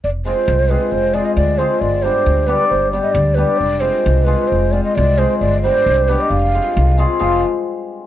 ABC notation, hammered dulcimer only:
X:1
M:2/4
L:1/8
Q:1/4=134
K:none
V:1 name="Hammered dulcimer"
z [_A,CF_A] z [A,CFA] | z [_A,CF_A] z [A,CFA] | z [G,B,DG] z [G,B,DG] | z [G,B,DG] z [G,B,DG] |
z [_A,CF_A] z [A,CFA] | z [_A,CF_A] z [A,CFA] | z [G,B,DG] z [G,B,DG] | z [_A,CF_A] z [A,CFA] |
[_A,CF_A] z3 |]